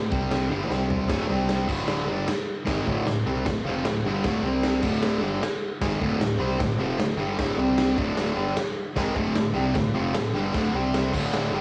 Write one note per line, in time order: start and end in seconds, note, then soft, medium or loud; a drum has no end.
0.00 0.10 D1 medium
0.10 0.48 C2 loud
0.10 0.49 C3 medium
0.10 0.50 G3 medium
0.10 0.50 C4 loud
0.10 kick loud
0.31 snare loud
0.31 crash medium
0.50 0.69 G1 loud
0.50 0.68 G2 loud
0.50 0.70 D3 loud
0.50 0.70 G3 loud
0.68 1.07 C2 medium
0.68 1.08 C3 loud
0.68 1.09 G3 loud
0.68 1.09 C4 loud
0.68 snare medium
0.90 floor tom medium
1.09 1.28 D1 medium
1.09 1.28 D2 medium
1.09 1.29 A2 loud
1.09 1.29 D3 loud
1.09 kick loud
1.09 snare loud
1.09 splash medium
1.09 crash medium
1.28 1.66 C2 loud
1.28 1.67 C3 loud
1.28 1.68 G3 loud
1.28 1.69 C4 loud
1.49 snare loud
1.49 crash medium
1.68 2.05 D1 loud
1.68 2.07 D2 loud
1.68 2.07 A2 loud
1.68 2.07 D3 medium
1.68 kick loud
1.68 crash loud
1.88 snare loud
1.88 crash medium
2.07 2.26 G1 medium
2.07 2.27 G2 loud
2.07 2.27 D3 loud
2.07 2.28 G3 loud
2.27 2.46 D1 soft
2.27 muted distorted electric guitar stroke medium
2.27 snare loud
2.27 crash medium
2.65 2.86 G#1 medium
2.65 2.85 G#2 loud
2.65 2.86 D#3 loud
2.65 2.86 G#3 loud
2.65 kick loud
2.65 snare loud
2.65 crash medium
2.86 3.05 D1 loud
2.86 3.05 D2 medium
2.86 3.05 A2 loud
2.86 3.07 D3 loud
2.86 kick medium
3.06 3.24 D1 medium
3.06 3.22 D2 medium
3.06 3.22 A2 medium
3.06 snare loud
3.06 crash medium
3.26 3.44 C2 loud
3.26 3.45 C3 loud
3.26 3.46 G3 loud
3.26 3.46 C4 loud
3.46 3.64 D1 medium
3.46 3.62 D2 medium
3.46 3.62 A2 medium
3.46 kick loud
3.46 snare loud
3.46 crash medium
3.64 3.83 F1 loud
3.64 3.84 F2 loud
3.64 3.85 C3 loud
3.64 3.85 F3 loud
3.85 4.03 D1 medium
3.85 4.01 D2 medium
3.85 4.02 A2 medium
3.85 snare loud
3.85 crash medium
4.04 4.22 G1 medium
4.04 4.24 G2 medium
4.04 4.25 D3 medium
4.04 4.25 G3 medium
4.24 4.42 D1 medium
4.24 4.43 D2 loud
4.24 4.44 A2 loud
4.24 4.44 D3 loud
4.24 kick loud
4.24 snare loud
4.24 crash medium
4.43 4.80 C2 loud
4.43 4.83 C3 medium
4.43 4.83 G3 loud
4.43 4.84 C4 loud
4.63 snare loud
4.63 crash medium
4.83 5.20 D1 loud
4.83 5.21 D2 medium
4.83 5.22 A2 loud
4.83 5.21 D3 loud
4.83 kick loud
4.83 crash loud
5.03 snare loud
5.03 crash medium
5.21 5.40 G1 medium
5.21 5.41 G2 loud
5.21 5.42 D3 loud
5.21 5.42 G3 loud
5.41 5.60 D1 soft
5.41 muted distorted electric guitar stroke medium
5.41 snare loud
5.41 crash medium
5.81 6.00 G#1 loud
5.81 6.00 G#2 loud
5.81 6.01 D#3 loud
5.81 6.01 G#3 loud
5.81 kick loud
5.81 snare loud
5.81 crash medium
6.00 6.19 D1 loud
6.00 6.19 D2 loud
6.00 6.19 A2 loud
6.00 6.21 D3 loud
6.00 kick medium
6.20 6.39 D1 medium
6.20 6.36 D2 medium
6.20 6.36 A2 medium
6.20 snare loud
6.20 crash medium
6.38 6.58 C2 loud
6.38 6.59 C3 medium
6.38 6.59 G3 medium
6.38 6.60 C4 loud
6.59 6.77 D1 medium
6.59 6.76 D2 medium
6.59 6.75 A2 medium
6.59 kick loud
6.59 snare loud
6.59 crash medium
6.78 6.97 F1 loud
6.78 6.98 F2 medium
6.78 6.99 C3 loud
6.78 6.99 F3 loud
6.98 7.16 D1 medium
6.98 7.15 D2 medium
6.98 7.15 A2 medium
6.98 snare loud
6.98 crash medium
7.17 7.36 G1 medium
7.17 7.37 G2 medium
7.17 7.38 D3 medium
7.17 7.38 G3 medium
7.37 7.57 D1 loud
7.37 7.57 D2 medium
7.37 7.58 A2 loud
7.37 7.59 D3 loud
7.37 kick loud
7.37 snare loud
7.37 crash medium
7.57 7.95 C2 loud
7.57 7.97 C3 medium
7.57 7.97 G3 medium
7.57 7.98 C4 loud
7.78 snare loud
7.78 crash medium
7.97 8.34 D1 loud
7.97 8.34 D2 medium
7.97 8.35 A2 medium
7.97 8.34 D3 loud
7.97 kick loud
8.17 snare loud
8.17 crash medium
8.35 8.55 G1 loud
8.35 8.55 G2 loud
8.35 8.56 D3 loud
8.35 8.56 G3 loud
8.55 8.75 D1 soft
8.55 muted distorted electric guitar stroke medium
8.55 snare loud
8.55 crash medium
8.95 9.14 G#1 medium
8.95 9.14 G#2 medium
8.95 9.16 D#3 loud
8.95 9.16 G#3 loud
8.95 kick loud
8.95 snare loud
8.95 crash medium
9.15 9.34 D1 loud
9.15 9.34 D2 medium
9.15 9.35 A2 medium
9.15 9.36 D3 loud
9.15 kick medium
9.35 9.54 D1 medium
9.35 9.52 D2 medium
9.35 9.52 A2 medium
9.35 snare loud
9.35 crash medium
9.54 9.73 C2 loud
9.54 9.74 C3 loud
9.54 9.74 G3 loud
9.54 9.75 C4 loud
9.74 9.93 D1 medium
9.74 9.91 D2 medium
9.74 9.91 A2 medium
9.74 kick loud
9.74 snare loud
9.74 crash medium
9.94 10.13 F1 medium
9.94 10.14 F2 loud
9.94 10.14 C3 loud
9.94 10.15 F3 loud
10.14 10.33 D1 medium
10.14 10.30 D2 medium
10.14 10.30 A2 medium
10.14 snare loud
10.14 crash medium
10.33 10.52 G1 medium
10.33 10.53 G2 medium
10.33 10.54 D3 medium
10.33 10.54 G3 medium
10.54 10.72 D1 medium
10.54 10.73 D2 loud
10.54 10.73 A2 medium
10.54 10.74 D3 loud
10.54 kick loud
10.54 snare loud
10.54 crash medium
10.73 11.10 C2 loud
10.73 11.13 C3 loud
10.73 11.13 G3 loud
10.73 11.14 C4 loud
10.94 snare loud
10.94 crash medium
11.13 11.50 D1 loud
11.13 11.52 D2 loud
11.13 11.52 A2 medium
11.13 11.53 D3 loud
11.13 kick loud
11.13 crash loud
11.34 snare loud
11.34 crash medium
11.51 11.61 G1 loud
11.51 11.61 G2 loud
11.51 11.61 D3 loud
11.51 11.61 G3 loud